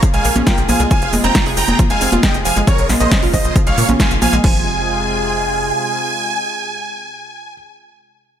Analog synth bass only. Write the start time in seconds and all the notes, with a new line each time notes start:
0.14 A#1
0.25 A#1
0.36 A#1
0.58 A#1
0.69 A#1
0.80 C2
1.02 F1
1.13 F1
1.24 F1
1.46 F1
1.57 F1
1.68 F1
1.90 F1
2.01 F1
2.12 F1
2.34 F1
2.46 F1
2.57 G1
2.79 A#1
2.90 A#1
3.01 A#1
3.23 A#1
3.34 A#1
3.45 A#1
3.67 A#1
3.78 A#2
3.89 A#1
4.11 A#1
4.22 A#1
4.33 A#1
4.44 F1